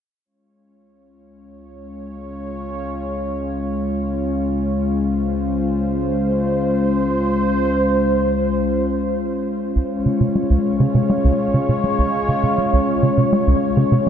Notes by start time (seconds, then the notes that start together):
0.25 C#2 G#3 C#4 F4 C#5
5.00 C5
9.76 C#2 G#3 C#4 F4 C#5
10.06 C#3
10.21 C3
10.36 G#3
10.50 C#2
10.80 C#3
10.95 C3
11.10 G#3
11.25 C#2
11.54 C#3
11.69 C3
11.84 G#3
11.99 C#2
12.29 C#3
12.43 C3
12.58 G#3
12.73 C#2
13.03 C#3
13.18 C3
13.33 G#3
13.48 C#2
13.77 C#3
13.92 C3